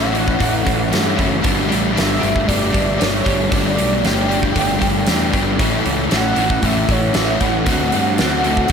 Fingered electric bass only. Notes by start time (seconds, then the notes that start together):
Already playing: A1
0.41 A1
0.67 A1
0.93 G2
1.19 F#1
1.45 G1
1.71 A1
1.97 G1
2.23 G1
2.49 G1
2.74 G1
3.01 G1
3.26 G1
3.53 G1
3.79 B1
4.03 G1
4.56 G1
4.82 G1
5.08 E2
5.34 G1
5.59 A1
5.86 C#2
6.12 A1
6.37 A1
6.63 A1
6.89 A1
7.15 A1
7.41 A1
7.67 D2
7.94 G2
8.21 D2